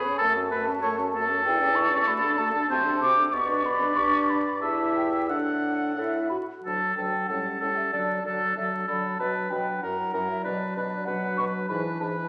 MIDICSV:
0, 0, Header, 1, 6, 480
1, 0, Start_track
1, 0, Key_signature, 2, "major"
1, 0, Tempo, 628272
1, 153, Time_signature, 2, 2, 24, 8
1, 3034, Tempo, 664452
1, 5434, Tempo, 634249
1, 7354, Tempo, 620476
1, 9254, End_track
2, 0, Start_track
2, 0, Title_t, "Flute"
2, 0, Program_c, 0, 73
2, 0, Note_on_c, 0, 83, 83
2, 150, Note_off_c, 0, 83, 0
2, 155, Note_on_c, 0, 81, 91
2, 1091, Note_off_c, 0, 81, 0
2, 1106, Note_on_c, 0, 79, 83
2, 1337, Note_on_c, 0, 85, 80
2, 1348, Note_off_c, 0, 79, 0
2, 1587, Note_on_c, 0, 83, 94
2, 1598, Note_off_c, 0, 85, 0
2, 1818, Note_on_c, 0, 81, 92
2, 1830, Note_off_c, 0, 83, 0
2, 2055, Note_off_c, 0, 81, 0
2, 2060, Note_on_c, 0, 81, 99
2, 2298, Note_off_c, 0, 81, 0
2, 2302, Note_on_c, 0, 86, 87
2, 2545, Note_on_c, 0, 85, 90
2, 2557, Note_off_c, 0, 86, 0
2, 2793, Note_on_c, 0, 83, 91
2, 2805, Note_off_c, 0, 85, 0
2, 3029, Note_on_c, 0, 85, 104
2, 3040, Note_off_c, 0, 83, 0
2, 3272, Note_on_c, 0, 83, 82
2, 3283, Note_off_c, 0, 85, 0
2, 3500, Note_off_c, 0, 83, 0
2, 3504, Note_on_c, 0, 81, 82
2, 3739, Note_off_c, 0, 81, 0
2, 3743, Note_on_c, 0, 79, 73
2, 3983, Note_off_c, 0, 79, 0
2, 3987, Note_on_c, 0, 78, 70
2, 4469, Note_off_c, 0, 78, 0
2, 4478, Note_on_c, 0, 76, 64
2, 4707, Note_off_c, 0, 76, 0
2, 4711, Note_on_c, 0, 83, 71
2, 4767, Note_off_c, 0, 83, 0
2, 4965, Note_on_c, 0, 81, 47
2, 5187, Note_off_c, 0, 81, 0
2, 5192, Note_on_c, 0, 79, 48
2, 5419, Note_on_c, 0, 78, 55
2, 5430, Note_off_c, 0, 79, 0
2, 5787, Note_off_c, 0, 78, 0
2, 5793, Note_on_c, 0, 76, 52
2, 5838, Note_off_c, 0, 76, 0
2, 5906, Note_on_c, 0, 74, 54
2, 6383, Note_off_c, 0, 74, 0
2, 6398, Note_on_c, 0, 76, 58
2, 6452, Note_off_c, 0, 76, 0
2, 6635, Note_on_c, 0, 83, 60
2, 6871, Note_on_c, 0, 81, 53
2, 6882, Note_off_c, 0, 83, 0
2, 7106, Note_on_c, 0, 79, 59
2, 7118, Note_off_c, 0, 81, 0
2, 7341, Note_on_c, 0, 78, 67
2, 7353, Note_off_c, 0, 79, 0
2, 7705, Note_on_c, 0, 76, 62
2, 7716, Note_off_c, 0, 78, 0
2, 7806, Note_off_c, 0, 76, 0
2, 7811, Note_on_c, 0, 74, 68
2, 8298, Note_on_c, 0, 78, 73
2, 8310, Note_off_c, 0, 74, 0
2, 8542, Note_off_c, 0, 78, 0
2, 8547, Note_on_c, 0, 85, 75
2, 8602, Note_off_c, 0, 85, 0
2, 8791, Note_on_c, 0, 83, 59
2, 8845, Note_off_c, 0, 83, 0
2, 9035, Note_on_c, 0, 81, 61
2, 9089, Note_off_c, 0, 81, 0
2, 9254, End_track
3, 0, Start_track
3, 0, Title_t, "Oboe"
3, 0, Program_c, 1, 68
3, 0, Note_on_c, 1, 68, 53
3, 135, Note_off_c, 1, 68, 0
3, 140, Note_on_c, 1, 69, 68
3, 250, Note_off_c, 1, 69, 0
3, 390, Note_on_c, 1, 71, 54
3, 498, Note_off_c, 1, 71, 0
3, 630, Note_on_c, 1, 73, 61
3, 738, Note_off_c, 1, 73, 0
3, 878, Note_on_c, 1, 69, 68
3, 2050, Note_off_c, 1, 69, 0
3, 2060, Note_on_c, 1, 72, 74
3, 2371, Note_off_c, 1, 72, 0
3, 2548, Note_on_c, 1, 74, 81
3, 3482, Note_off_c, 1, 74, 0
3, 3501, Note_on_c, 1, 76, 60
3, 3981, Note_off_c, 1, 76, 0
3, 3990, Note_on_c, 1, 78, 66
3, 4711, Note_off_c, 1, 78, 0
3, 4969, Note_on_c, 1, 69, 42
3, 5194, Note_off_c, 1, 69, 0
3, 5198, Note_on_c, 1, 69, 31
3, 5425, Note_off_c, 1, 69, 0
3, 5429, Note_on_c, 1, 69, 34
3, 5667, Note_off_c, 1, 69, 0
3, 5674, Note_on_c, 1, 69, 36
3, 5908, Note_off_c, 1, 69, 0
3, 5912, Note_on_c, 1, 69, 43
3, 6149, Note_off_c, 1, 69, 0
3, 6164, Note_on_c, 1, 69, 36
3, 6390, Note_off_c, 1, 69, 0
3, 6394, Note_on_c, 1, 69, 35
3, 6625, Note_off_c, 1, 69, 0
3, 6629, Note_on_c, 1, 69, 37
3, 6869, Note_off_c, 1, 69, 0
3, 6877, Note_on_c, 1, 71, 51
3, 7108, Note_off_c, 1, 71, 0
3, 7113, Note_on_c, 1, 71, 38
3, 7347, Note_off_c, 1, 71, 0
3, 7352, Note_on_c, 1, 70, 36
3, 7586, Note_off_c, 1, 70, 0
3, 7590, Note_on_c, 1, 70, 42
3, 7823, Note_off_c, 1, 70, 0
3, 7827, Note_on_c, 1, 71, 51
3, 8068, Note_off_c, 1, 71, 0
3, 8077, Note_on_c, 1, 71, 39
3, 8305, Note_off_c, 1, 71, 0
3, 8310, Note_on_c, 1, 71, 45
3, 8548, Note_off_c, 1, 71, 0
3, 8563, Note_on_c, 1, 71, 44
3, 8785, Note_off_c, 1, 71, 0
3, 8790, Note_on_c, 1, 71, 52
3, 9026, Note_off_c, 1, 71, 0
3, 9031, Note_on_c, 1, 71, 40
3, 9254, Note_off_c, 1, 71, 0
3, 9254, End_track
4, 0, Start_track
4, 0, Title_t, "Clarinet"
4, 0, Program_c, 2, 71
4, 31, Note_on_c, 2, 73, 50
4, 152, Note_off_c, 2, 73, 0
4, 156, Note_on_c, 2, 69, 51
4, 270, Note_on_c, 2, 66, 48
4, 281, Note_off_c, 2, 69, 0
4, 394, Note_on_c, 2, 69, 45
4, 405, Note_off_c, 2, 66, 0
4, 508, Note_on_c, 2, 66, 45
4, 520, Note_off_c, 2, 69, 0
4, 623, Note_off_c, 2, 66, 0
4, 628, Note_on_c, 2, 69, 55
4, 753, Note_on_c, 2, 66, 51
4, 764, Note_off_c, 2, 69, 0
4, 876, Note_on_c, 2, 69, 58
4, 887, Note_off_c, 2, 66, 0
4, 993, Note_on_c, 2, 66, 56
4, 1005, Note_off_c, 2, 69, 0
4, 1111, Note_off_c, 2, 66, 0
4, 1114, Note_on_c, 2, 69, 57
4, 1232, Note_on_c, 2, 67, 52
4, 1243, Note_off_c, 2, 69, 0
4, 1349, Note_on_c, 2, 69, 51
4, 1361, Note_off_c, 2, 67, 0
4, 1466, Note_on_c, 2, 67, 55
4, 1477, Note_off_c, 2, 69, 0
4, 1582, Note_off_c, 2, 67, 0
4, 1586, Note_on_c, 2, 66, 62
4, 1704, Note_on_c, 2, 69, 56
4, 1715, Note_off_c, 2, 66, 0
4, 1824, Note_on_c, 2, 66, 52
4, 1835, Note_off_c, 2, 69, 0
4, 1949, Note_on_c, 2, 69, 51
4, 1961, Note_off_c, 2, 66, 0
4, 2059, Note_off_c, 2, 69, 0
4, 2064, Note_on_c, 2, 66, 55
4, 2186, Note_on_c, 2, 69, 57
4, 2197, Note_off_c, 2, 66, 0
4, 2310, Note_on_c, 2, 66, 58
4, 2321, Note_off_c, 2, 69, 0
4, 2436, Note_on_c, 2, 69, 56
4, 2447, Note_off_c, 2, 66, 0
4, 2546, Note_off_c, 2, 69, 0
4, 2550, Note_on_c, 2, 67, 63
4, 2680, Note_on_c, 2, 71, 54
4, 2691, Note_off_c, 2, 67, 0
4, 2790, Note_on_c, 2, 67, 55
4, 2802, Note_off_c, 2, 71, 0
4, 2915, Note_on_c, 2, 71, 56
4, 2926, Note_off_c, 2, 67, 0
4, 3033, Note_off_c, 2, 71, 0
4, 3038, Note_on_c, 2, 67, 67
4, 3390, Note_off_c, 2, 67, 0
4, 3512, Note_on_c, 2, 67, 64
4, 3996, Note_on_c, 2, 69, 53
4, 4007, Note_off_c, 2, 67, 0
4, 4482, Note_off_c, 2, 69, 0
4, 4486, Note_on_c, 2, 69, 56
4, 4596, Note_off_c, 2, 69, 0
4, 4971, Note_on_c, 2, 62, 37
4, 5200, Note_off_c, 2, 62, 0
4, 5203, Note_on_c, 2, 62, 32
4, 5430, Note_off_c, 2, 62, 0
4, 5433, Note_on_c, 2, 61, 37
4, 5668, Note_off_c, 2, 61, 0
4, 5672, Note_on_c, 2, 61, 32
4, 5906, Note_off_c, 2, 61, 0
4, 5911, Note_on_c, 2, 62, 36
4, 6149, Note_off_c, 2, 62, 0
4, 6154, Note_on_c, 2, 62, 38
4, 6387, Note_off_c, 2, 62, 0
4, 6392, Note_on_c, 2, 62, 41
4, 6625, Note_off_c, 2, 62, 0
4, 6629, Note_on_c, 2, 62, 36
4, 6869, Note_off_c, 2, 62, 0
4, 6875, Note_on_c, 2, 62, 44
4, 7103, Note_off_c, 2, 62, 0
4, 7108, Note_on_c, 2, 62, 38
4, 7341, Note_off_c, 2, 62, 0
4, 7346, Note_on_c, 2, 64, 46
4, 7585, Note_off_c, 2, 64, 0
4, 7597, Note_on_c, 2, 64, 41
4, 7831, Note_off_c, 2, 64, 0
4, 7834, Note_on_c, 2, 62, 46
4, 8072, Note_off_c, 2, 62, 0
4, 8080, Note_on_c, 2, 62, 45
4, 8315, Note_off_c, 2, 62, 0
4, 8322, Note_on_c, 2, 62, 51
4, 8554, Note_off_c, 2, 62, 0
4, 8561, Note_on_c, 2, 62, 44
4, 8789, Note_off_c, 2, 62, 0
4, 8793, Note_on_c, 2, 62, 54
4, 9026, Note_off_c, 2, 62, 0
4, 9031, Note_on_c, 2, 62, 47
4, 9254, Note_off_c, 2, 62, 0
4, 9254, End_track
5, 0, Start_track
5, 0, Title_t, "French horn"
5, 0, Program_c, 3, 60
5, 40, Note_on_c, 3, 61, 51
5, 156, Note_off_c, 3, 61, 0
5, 159, Note_on_c, 3, 57, 57
5, 278, Note_on_c, 3, 61, 46
5, 289, Note_off_c, 3, 57, 0
5, 395, Note_on_c, 3, 57, 51
5, 406, Note_off_c, 3, 61, 0
5, 521, Note_on_c, 3, 61, 46
5, 532, Note_off_c, 3, 57, 0
5, 632, Note_off_c, 3, 61, 0
5, 636, Note_on_c, 3, 57, 54
5, 752, Note_on_c, 3, 61, 52
5, 763, Note_off_c, 3, 57, 0
5, 876, Note_on_c, 3, 57, 48
5, 888, Note_off_c, 3, 61, 0
5, 991, Note_on_c, 3, 61, 54
5, 1003, Note_off_c, 3, 57, 0
5, 1104, Note_off_c, 3, 61, 0
5, 1108, Note_on_c, 3, 64, 56
5, 1223, Note_on_c, 3, 61, 51
5, 1235, Note_off_c, 3, 64, 0
5, 1337, Note_on_c, 3, 64, 57
5, 1348, Note_off_c, 3, 61, 0
5, 1454, Note_on_c, 3, 61, 52
5, 1466, Note_off_c, 3, 64, 0
5, 1566, Note_off_c, 3, 61, 0
5, 1571, Note_on_c, 3, 57, 59
5, 1695, Note_on_c, 3, 62, 56
5, 1707, Note_off_c, 3, 57, 0
5, 1815, Note_on_c, 3, 57, 54
5, 1826, Note_off_c, 3, 62, 0
5, 1929, Note_on_c, 3, 62, 54
5, 1940, Note_off_c, 3, 57, 0
5, 2048, Note_off_c, 3, 62, 0
5, 2052, Note_on_c, 3, 60, 65
5, 2169, Note_on_c, 3, 62, 52
5, 2180, Note_off_c, 3, 60, 0
5, 2288, Note_on_c, 3, 60, 55
5, 2300, Note_off_c, 3, 62, 0
5, 2412, Note_on_c, 3, 62, 55
5, 2424, Note_off_c, 3, 60, 0
5, 2531, Note_off_c, 3, 62, 0
5, 2535, Note_on_c, 3, 59, 58
5, 2661, Note_on_c, 3, 62, 52
5, 2672, Note_off_c, 3, 59, 0
5, 2779, Note_on_c, 3, 59, 56
5, 2791, Note_off_c, 3, 62, 0
5, 2905, Note_on_c, 3, 62, 61
5, 2917, Note_off_c, 3, 59, 0
5, 3020, Note_off_c, 3, 62, 0
5, 3024, Note_on_c, 3, 62, 70
5, 3370, Note_off_c, 3, 62, 0
5, 3493, Note_on_c, 3, 64, 62
5, 3991, Note_on_c, 3, 62, 54
5, 4002, Note_off_c, 3, 64, 0
5, 4471, Note_off_c, 3, 62, 0
5, 4476, Note_on_c, 3, 64, 58
5, 4707, Note_off_c, 3, 64, 0
5, 4720, Note_on_c, 3, 66, 61
5, 4831, Note_off_c, 3, 66, 0
5, 4958, Note_on_c, 3, 54, 41
5, 5190, Note_off_c, 3, 54, 0
5, 5195, Note_on_c, 3, 54, 37
5, 5424, Note_off_c, 3, 54, 0
5, 5428, Note_on_c, 3, 55, 33
5, 5663, Note_off_c, 3, 55, 0
5, 5668, Note_on_c, 3, 55, 37
5, 5906, Note_off_c, 3, 55, 0
5, 5919, Note_on_c, 3, 54, 41
5, 6147, Note_off_c, 3, 54, 0
5, 6151, Note_on_c, 3, 54, 38
5, 6388, Note_off_c, 3, 54, 0
5, 6393, Note_on_c, 3, 54, 38
5, 6627, Note_off_c, 3, 54, 0
5, 6631, Note_on_c, 3, 54, 38
5, 6870, Note_off_c, 3, 54, 0
5, 6876, Note_on_c, 3, 54, 46
5, 7111, Note_off_c, 3, 54, 0
5, 7116, Note_on_c, 3, 54, 44
5, 7348, Note_off_c, 3, 54, 0
5, 7355, Note_on_c, 3, 54, 42
5, 7590, Note_off_c, 3, 54, 0
5, 7601, Note_on_c, 3, 54, 39
5, 7833, Note_off_c, 3, 54, 0
5, 7839, Note_on_c, 3, 54, 47
5, 8074, Note_off_c, 3, 54, 0
5, 8082, Note_on_c, 3, 54, 45
5, 8316, Note_off_c, 3, 54, 0
5, 8325, Note_on_c, 3, 54, 51
5, 8556, Note_off_c, 3, 54, 0
5, 8565, Note_on_c, 3, 54, 43
5, 8794, Note_off_c, 3, 54, 0
5, 8802, Note_on_c, 3, 52, 55
5, 9032, Note_off_c, 3, 52, 0
5, 9037, Note_on_c, 3, 52, 50
5, 9254, Note_off_c, 3, 52, 0
5, 9254, End_track
6, 0, Start_track
6, 0, Title_t, "Bassoon"
6, 0, Program_c, 4, 70
6, 152, Note_on_c, 4, 42, 64
6, 572, Note_off_c, 4, 42, 0
6, 629, Note_on_c, 4, 42, 56
6, 1053, Note_off_c, 4, 42, 0
6, 1111, Note_on_c, 4, 40, 66
6, 1533, Note_off_c, 4, 40, 0
6, 1589, Note_on_c, 4, 50, 55
6, 2012, Note_off_c, 4, 50, 0
6, 2073, Note_on_c, 4, 48, 74
6, 2494, Note_off_c, 4, 48, 0
6, 2548, Note_on_c, 4, 47, 68
6, 2977, Note_off_c, 4, 47, 0
6, 3031, Note_on_c, 4, 43, 62
6, 3480, Note_off_c, 4, 43, 0
6, 3508, Note_on_c, 4, 40, 52
6, 3999, Note_on_c, 4, 45, 52
6, 4010, Note_off_c, 4, 40, 0
6, 4479, Note_off_c, 4, 45, 0
6, 4483, Note_on_c, 4, 45, 47
6, 4723, Note_off_c, 4, 45, 0
6, 4973, Note_on_c, 4, 38, 38
6, 5078, Note_off_c, 4, 38, 0
6, 5204, Note_on_c, 4, 38, 39
6, 5308, Note_off_c, 4, 38, 0
6, 5436, Note_on_c, 4, 45, 37
6, 5544, Note_off_c, 4, 45, 0
6, 5679, Note_on_c, 4, 45, 36
6, 5786, Note_off_c, 4, 45, 0
6, 5916, Note_on_c, 4, 50, 40
6, 6024, Note_off_c, 4, 50, 0
6, 6158, Note_on_c, 4, 50, 38
6, 6266, Note_off_c, 4, 50, 0
6, 6393, Note_on_c, 4, 50, 34
6, 6503, Note_off_c, 4, 50, 0
6, 6643, Note_on_c, 4, 50, 40
6, 6750, Note_off_c, 4, 50, 0
6, 6877, Note_on_c, 4, 47, 44
6, 6985, Note_off_c, 4, 47, 0
6, 7121, Note_on_c, 4, 47, 41
6, 7227, Note_off_c, 4, 47, 0
6, 7352, Note_on_c, 4, 42, 37
6, 7460, Note_off_c, 4, 42, 0
6, 7591, Note_on_c, 4, 42, 49
6, 7700, Note_off_c, 4, 42, 0
6, 7836, Note_on_c, 4, 47, 46
6, 7945, Note_off_c, 4, 47, 0
6, 8078, Note_on_c, 4, 47, 46
6, 8186, Note_off_c, 4, 47, 0
6, 8314, Note_on_c, 4, 47, 44
6, 8423, Note_off_c, 4, 47, 0
6, 8558, Note_on_c, 4, 47, 46
6, 8665, Note_off_c, 4, 47, 0
6, 8793, Note_on_c, 4, 44, 51
6, 8901, Note_off_c, 4, 44, 0
6, 9036, Note_on_c, 4, 44, 50
6, 9144, Note_off_c, 4, 44, 0
6, 9254, End_track
0, 0, End_of_file